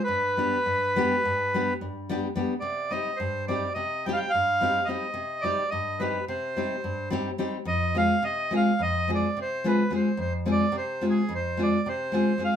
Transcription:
0.04 1.74 B4 loud
0.08 0.51 G2 medium
0.37 0.56 G3 medium
0.37 0.57 B3 soft
0.37 0.56 D4 medium
0.37 0.57 G4 medium
0.66 1.09 G2 medium
0.96 1.14 G3 medium
0.96 1.14 B3 medium
0.96 1.15 D4 medium
0.96 1.15 G4 medium
1.25 1.67 G2 medium
1.54 1.72 G3 medium
1.54 1.72 B3 medium
1.54 1.72 D4 medium
1.54 1.72 G4 medium
1.81 2.22 G2 medium
2.09 2.27 G3 medium
2.09 2.27 B3 medium
2.09 2.27 D4 medium
2.09 2.28 G4 medium
2.36 2.53 G3 medium
2.36 2.53 B3 medium
2.36 2.53 D4 medium
2.36 2.54 G4 medium
2.60 3.05 C3 medium
2.60 2.92 D5 medium
2.90 3.09 G3 medium
2.90 3.10 C4 medium
2.90 3.10 D#4 medium
2.90 3.10 G4 medium
2.90 3.19 D#5 loud
3.17 3.62 G2 medium
3.17 3.45 C5 medium
3.48 3.66 G3 medium
3.48 3.67 C4 medium
3.48 3.67 D#4 medium
3.48 3.68 G4 medium
3.48 3.73 D5 medium
3.74 4.19 C3 medium
3.74 4.06 D#5 loud
4.06 4.24 G3 medium
4.06 4.24 C4 medium
4.06 4.25 D#4 medium
4.06 4.25 G4 medium
4.06 4.12 G5 medium
4.13 4.19 F5 medium
4.13 4.32 G5 medium
4.30 4.88 F5 loud
4.34 4.75 G2 medium
4.61 4.79 G3 medium
4.61 4.79 C4 medium
4.61 4.79 D#4 medium
4.61 4.80 G4 medium
4.85 5.05 G3 medium
4.85 5.06 C4 medium
4.85 5.06 D#4 soft
4.85 5.44 D#5 medium
4.90 5.06 G4 medium
5.14 5.56 C3 medium
5.41 5.62 G3 medium
5.41 5.62 C4 medium
5.41 5.62 D#4 medium
5.41 5.70 D5 loud
5.46 5.63 G4 medium
5.70 6.14 G2 medium
5.70 6.01 D#5 medium
6.00 6.18 G3 medium
6.00 6.18 C4 medium
6.00 6.19 D#4 medium
6.00 6.19 G4 medium
6.00 6.25 B4 medium
6.28 6.71 C3 medium
6.28 7.09 C5 medium
6.57 6.75 G3 medium
6.57 6.75 C4 medium
6.57 6.76 D#4 medium
6.57 6.76 G4 medium
6.84 7.25 G2 medium
7.10 7.29 G3 medium
7.10 7.30 C4 medium
7.10 7.30 D#4 medium
7.10 7.30 G4 medium
7.38 7.56 G3 medium
7.38 7.56 C4 medium
7.38 7.57 D#4 medium
7.38 7.57 G4 medium
7.65 8.08 F2 medium
7.65 7.97 D#5 loud
7.95 8.13 G#3 medium
7.95 8.13 C4 medium
7.95 8.14 F4 medium
7.95 8.14 G#4 medium
7.95 8.24 F5 loud
8.23 8.65 C3 medium
8.23 8.54 D#5 loud
8.51 8.69 G#3 medium
8.51 8.70 C4 medium
8.51 8.70 F4 medium
8.51 8.71 G#4 medium
8.56 8.82 F5 medium
8.79 9.22 F2 medium
8.79 9.11 D#5 loud
9.08 9.26 G#3 medium
9.08 9.27 C4 medium
9.08 9.27 F4 medium
9.08 9.27 G#4 medium
9.15 9.39 D5 medium
9.37 9.77 C3 medium
9.42 9.68 C5 loud
9.64 9.82 G#3 medium
9.64 9.82 C4 medium
9.64 9.82 F4 medium
9.64 9.82 G#4 medium
9.64 9.92 B4 medium
9.90 10.08 G#3 medium
9.90 10.08 C4 medium
9.90 10.08 F4 soft
9.90 10.09 G#4 medium
9.96 10.19 C5 medium
10.17 10.59 F2 medium
10.17 10.33 C5 medium
10.46 10.64 G#3 medium
10.46 10.64 C4 medium
10.46 10.64 F4 medium
10.46 10.65 G#4 medium
10.52 10.76 D5 loud
10.72 11.15 C3 medium
10.78 11.06 C5 medium
11.01 11.20 G#3 medium
11.01 11.20 C4 medium
11.01 11.20 F4 medium
11.01 11.21 G#4 medium
11.10 11.34 G#4 medium
11.29 11.72 F2 medium
11.35 11.63 C5 medium
11.57 11.76 G#3 medium
11.57 11.77 C4 medium
11.57 11.77 F4 medium
11.57 11.77 G#4 medium
11.62 11.88 D5 medium
11.86 12.27 C3 medium
11.86 12.43 C5 medium
12.12 12.30 G#3 medium
12.12 12.31 C4 medium
12.12 12.31 F4 medium
12.12 12.32 G#4 medium
12.38 12.56 G#3 medium
12.38 12.56 C4 medium
12.38 12.56 F4 soft
12.38 12.56 G#4 medium
12.45 12.56 F5 medium

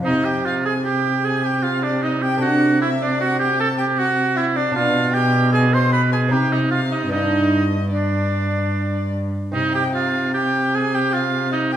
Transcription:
0.03 4.72 C3 soft
0.03 2.36 C4 soft
0.03 2.37 D#4 soft
0.03 0.26 D#4 medium
0.07 0.28 D#5 medium
0.25 0.47 G4 medium
0.25 0.46 G5 medium
0.45 0.65 F4 medium
0.45 0.55 F5 medium
0.65 0.74 G#4 medium
0.65 0.85 G#5 soft
0.85 1.26 G4 medium
0.85 1.27 G5 medium
1.24 1.45 G#4 medium
1.24 1.47 G#5 medium
1.44 1.64 G4 medium
1.44 1.65 G5 medium
1.63 1.84 F4 medium
1.63 1.83 F5 medium
1.83 2.04 D4 medium
1.83 2.03 D5 medium
2.02 2.24 D#4 medium
2.02 2.12 D#5 medium
2.22 2.41 G4 medium
2.22 2.44 G5 medium
2.38 4.69 A3 soft
2.38 4.70 D4 soft
2.42 2.80 F#4 medium
2.42 2.82 F#5 medium
2.82 2.90 E4 medium
2.82 3.03 E5 medium
3.02 3.20 D4 medium
3.02 3.23 D5 medium
3.20 3.39 F#4 medium
3.20 3.40 F#5 medium
3.39 3.59 G4 medium
3.39 3.61 G5 medium
3.59 3.69 A4 medium
3.59 3.77 A5 medium
3.78 4.00 G4 medium
3.78 3.86 G5 medium
3.97 4.38 F#4 medium
3.97 4.35 F#5 medium
4.36 4.58 E4 medium
4.36 4.44 E5 medium
4.56 4.75 D4 medium
4.56 4.75 D5 medium
4.72 6.28 B2 soft
4.72 6.33 B2 medium
4.72 6.26 D4 soft
4.72 5.16 F4 medium
4.72 5.13 F5 medium
5.14 5.52 G4 medium
5.14 5.52 G5 medium
5.53 5.75 G#4 medium
5.53 5.62 G#5 medium
5.74 5.92 C5 medium
5.74 5.93 C6 medium
5.92 6.12 B4 medium
5.92 6.01 B5 medium
6.12 6.33 G#4 medium
6.12 6.20 G#5 medium
6.29 7.08 C3 soft
6.29 7.11 C3 medium
6.29 7.08 C4 soft
6.29 7.09 D#4 soft
6.29 6.54 G4 medium
6.29 6.51 G5 medium
6.52 6.70 D#4 medium
6.52 6.60 D#5 medium
6.71 6.80 F4 medium
6.71 6.93 F5 medium
6.91 7.11 D#4 medium
6.91 7.12 D#5 medium
7.09 9.30 G2 soft
7.09 9.31 G2 soft
7.09 9.50 B3 soft
7.09 9.50 D4 soft
7.09 7.64 D#4 medium
7.13 7.92 D#5 medium
7.93 9.10 D4 medium
7.93 9.12 D5 soft
9.52 11.77 C3 soft
9.52 11.77 C3 medium
9.52 11.77 C4 soft
9.52 11.77 D#4 soft
9.52 9.73 D#4 medium
9.52 9.74 D#5 medium
9.74 9.84 G4 medium
9.74 9.94 G5 medium
9.94 10.33 F4 medium
9.94 10.34 F5 medium
10.34 10.76 G4 medium
10.34 10.76 G5 medium
10.74 10.96 G#4 medium
10.74 10.96 G#5 medium
10.94 11.15 G4 medium
10.94 11.16 G5 medium
11.14 11.52 F4 medium
11.14 11.52 F5 medium
11.52 11.72 D#4 medium
11.52 11.60 D#5 medium
11.72 11.77 G4 medium
11.72 11.77 G5 medium

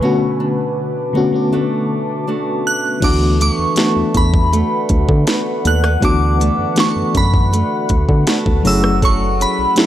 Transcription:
0.00 3.02 B2 medium
0.00 1.03 D3 medium
0.00 1.04 A3 medium
0.00 1.04 B3 medium
0.00 1.05 C#4 medium
0.00 1.15 F#4 medium
0.00 1.55 B4 medium
0.00 2.98 B4 medium
0.00 3.00 A5 medium
0.00 3.00 D6 medium
0.05 1.06 F#4 loud
0.40 1.53 D4 medium
1.13 1.30 D3 medium
1.13 1.32 A3 medium
1.13 1.32 B3 medium
1.13 1.33 C#4 medium
1.13 1.53 F#4 medium
1.17 1.33 F#4 loud
1.31 2.68 D3 medium
1.31 2.69 A3 medium
1.31 2.70 B3 medium
1.31 2.70 C#4 medium
1.36 2.71 F#4 medium
1.52 2.27 A3 medium
1.52 2.28 D4 medium
1.52 2.28 F#4 medium
2.27 3.40 A3 medium
2.27 3.78 D4 medium
2.27 3.03 F#4 medium
2.67 3.01 F#6 loud
3.00 3.51 D2 loud
3.00 6.01 D3 medium
3.00 3.69 E3 medium
3.00 3.70 A3 medium
3.00 3.70 B3 medium
3.00 3.71 D4 medium
3.00 3.78 F#4 medium
3.00 8.61 B4 medium
3.00 8.61 D5 medium
3.00 9.86 F#5 medium
3.00 3.42 D6 loud
3.00 kick loud
3.00 closed hi-hat medium
3.00 crash loud
3.05 3.71 F#4 medium
3.40 3.77 A3 medium
3.40 3.53 D6 loud
3.40 closed hi-hat medium
3.53 4.18 C#6 loud
3.59 3.66 E2 soft
3.76 5.12 E3 medium
3.76 5.13 A3 medium
3.76 4.52 A3 medium
3.76 5.13 B3 medium
3.76 5.27 B3 medium
3.76 5.14 D4 medium
3.76 5.28 F#4 medium
3.76 snare loud
3.76 closed hi-hat medium
3.80 5.15 F#4 medium
3.96 4.04 E2 soft
4.14 4.63 E2 medium
4.14 5.71 B5 loud
4.14 kick medium
4.14 closed hi-hat medium
4.34 kick loud
4.53 5.27 A3 medium
4.53 closed hi-hat medium
4.89 5.06 D2 medium
4.89 kick loud
4.89 closed hi-hat medium
5.09 5.25 D3 loud
5.09 kick medium
5.27 5.65 A3 medium
5.27 5.65 B3 medium
5.27 6.03 F#4 medium
5.27 snare loud
5.27 closed hi-hat medium
5.65 5.97 D#2 medium
5.65 5.84 A3 medium
5.65 6.05 F#6 loud
5.65 closed hi-hat medium
5.84 6.77 B3 medium
5.84 cross-stick loud
6.00 6.51 D2 loud
6.00 8.72 D3 medium
6.00 6.69 E3 medium
6.00 6.70 A3 medium
6.00 6.70 B3 medium
6.00 6.71 D4 medium
6.00 6.78 F#4 medium
6.00 kick loud
6.00 closed hi-hat medium
6.05 6.72 F#4 medium
6.05 6.81 D6 loud
6.40 6.77 A3 medium
6.40 closed hi-hat medium
6.59 6.66 F#2 soft
6.76 8.12 E3 medium
6.76 8.13 A3 medium
6.76 7.52 A3 medium
6.76 8.13 B3 medium
6.76 8.27 B3 medium
6.76 8.14 D4 medium
6.76 8.28 F#4 medium
6.76 snare loud
6.76 closed hi-hat medium
6.80 8.15 F#4 medium
6.80 7.17 C#6 loud
6.96 7.04 F#2 soft
7.15 7.63 F#2 medium
7.15 8.71 B5 loud
7.15 kick medium
7.15 closed hi-hat medium
7.34 kick loud
7.53 8.27 A3 medium
7.53 closed hi-hat medium
7.89 8.06 D2 medium
7.89 kick medium
7.89 closed hi-hat medium
8.09 8.25 D3 loud
8.09 kick medium
8.27 8.64 A3 medium
8.27 8.73 B3 medium
8.27 9.78 F#4 medium
8.27 snare loud
8.27 closed hi-hat medium
8.46 8.62 D2 loud
8.46 kick medium
8.63 9.46 F#1 loud
8.63 9.66 F#3 medium
8.63 9.01 F#3 medium
8.63 9.66 A3 medium
8.63 9.86 A3 medium
8.63 9.67 C#4 medium
8.63 9.67 E4 medium
8.63 9.86 E6 medium
8.63 open hi-hat medium
8.67 9.68 G#4 medium
8.67 9.01 E6 loud
8.84 cross-stick loud
9.02 9.86 F#3 medium
9.02 9.78 A4 medium
9.02 9.42 C#6 loud
9.02 kick loud
9.02 closed hi-hat medium
9.40 9.76 C#4 medium
9.40 9.86 B5 medium
9.40 closed hi-hat medium
9.59 9.66 B1 soft
9.75 9.86 F#3 medium
9.75 9.86 A3 medium
9.75 9.86 C#4 medium
9.75 9.86 E4 medium
9.75 9.86 A4 medium
9.75 snare loud
9.75 closed hi-hat medium
9.80 9.85 G4 medium

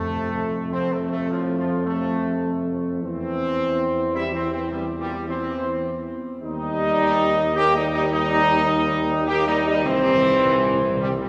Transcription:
0.00 3.03 F2 medium
0.00 0.68 C3 medium
0.00 0.68 A3 loud
0.00 0.68 A4 medium
0.71 0.90 F3 medium
0.71 0.90 C4 medium
0.71 0.89 C5 medium
0.92 1.01 C3 medium
0.92 1.11 A3 medium
0.92 1.10 A4 medium
1.12 1.29 C3 medium
1.12 1.29 A3 medium
1.12 1.29 A4 medium
1.30 1.57 A2 medium
1.30 1.56 F3 medium
1.30 1.43 F4 medium
1.58 1.85 A2 medium
1.58 1.84 F3 medium
1.58 1.85 F4 medium
1.86 2.70 C3 medium
1.86 2.68 A3 medium
1.86 2.70 A4 medium
3.01 6.15 E2 medium
3.01 4.11 E3 medium
3.01 4.11 C4 loud
3.01 4.10 C5 medium
4.13 4.32 G3 medium
4.13 4.23 E4 loud
4.13 4.31 E5 loud
4.33 4.50 E3 medium
4.33 4.52 C4 loud
4.33 4.41 C5 medium
4.51 4.60 E3 medium
4.51 4.70 C4 medium
4.51 4.69 C5 medium
4.69 4.83 C3 medium
4.69 4.85 G3 medium
4.69 4.84 G4 medium
4.99 5.12 A#2 medium
4.99 5.28 G3 loud
4.99 5.27 G4 medium
5.28 6.10 E3 medium
5.28 6.10 C4 loud
5.28 6.10 C5 medium
6.41 9.87 D#2 medium
6.41 7.52 G3 loud
6.41 7.53 D#4 loud
6.41 7.53 D#5 loud
7.56 7.75 A#3 loud
7.56 7.74 G4 loud
7.56 7.74 G5 loud
7.75 7.95 G3 medium
7.75 7.85 D#4 loud
7.75 7.93 D#5 medium
7.94 8.13 G3 loud
7.94 8.03 D#4 loud
7.94 8.11 D#5 medium
8.12 9.24 G3 loud
8.12 9.23 D#4 loud
8.12 9.23 D#5 loud
9.27 9.45 A#3 loud
9.27 9.45 G4 loud
9.27 9.36 G5 loud
9.47 9.65 G3 loud
9.47 9.65 D#4 loud
9.47 9.64 D#5 medium
9.66 9.84 G3 loud
9.66 9.84 D#4 loud
9.66 9.84 D#5 medium
9.84 11.29 C2 medium
9.84 9.91 C3 soft
9.84 10.99 E3 loud
9.84 10.96 C4 loud
9.84 11.01 C5 loud
9.92 9.98 C3 soft
10.00 10.06 C3 soft
10.07 10.13 C3 soft
10.15 10.21 C3 soft
10.22 10.29 C3 soft
10.30 10.36 C3 soft
10.37 10.44 C3 soft
10.45 10.51 C3 soft
10.52 10.58 C3 soft
10.59 10.65 C3 soft
10.66 10.73 C3 soft
10.74 10.79 C3 soft
10.81 10.87 C3 medium
10.89 10.96 C3 medium
10.97 11.03 C3 medium
10.97 11.18 C3 medium
10.97 11.08 G3 loud
11.01 11.11 C3 medium
11.01 11.10 G4 medium
11.12 11.18 C3 medium
11.19 11.29 A#2 medium
11.19 11.27 C3 medium
11.19 11.29 G3 medium
11.19 11.29 G4 medium

